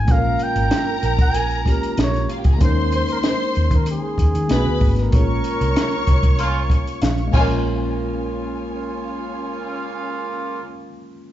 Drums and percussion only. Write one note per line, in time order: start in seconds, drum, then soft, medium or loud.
0.08 kick loud
0.08 closed hi-hat medium
0.39 closed hi-hat medium
0.56 closed hi-hat medium
0.71 snare loud
0.71 closed hi-hat medium
1.03 closed hi-hat medium
1.19 kick loud
1.19 closed hi-hat medium
1.34 closed hi-hat medium
1.51 closed hi-hat soft
1.66 kick medium
1.66 closed hi-hat medium
1.83 closed hi-hat medium
1.97 snare loud
1.97 closed hi-hat medium
2.14 snare soft
2.14 closed hi-hat soft
2.29 closed hi-hat medium
2.44 kick medium
2.44 closed hi-hat soft
2.61 kick loud
2.61 closed hi-hat medium
2.92 closed hi-hat medium
3.08 closed hi-hat medium
3.23 snare loud
3.23 closed hi-hat medium
3.55 closed hi-hat medium
3.71 kick medium
3.71 closed hi-hat medium
3.86 closed hi-hat medium
4.18 kick medium
4.18 closed hi-hat medium
4.35 closed hi-hat medium
4.49 snare loud
4.49 closed hi-hat medium
4.80 kick medium
4.80 open hi-hat medium
4.96 snare soft
4.96 closed hi-hat soft
5.12 kick loud
5.12 closed hi-hat medium
5.44 closed hi-hat medium
5.61 closed hi-hat medium
5.76 snare loud
5.76 closed hi-hat medium
5.91 closed hi-hat soft
6.07 kick medium
6.07 closed hi-hat medium
6.23 kick medium
6.23 closed hi-hat medium
6.39 closed hi-hat loud
6.70 kick medium
6.70 closed hi-hat medium
6.87 closed hi-hat medium
7.02 snare loud
7.02 closed hi-hat medium
7.18 closed hi-hat soft
7.34 kick loud
7.34 crash medium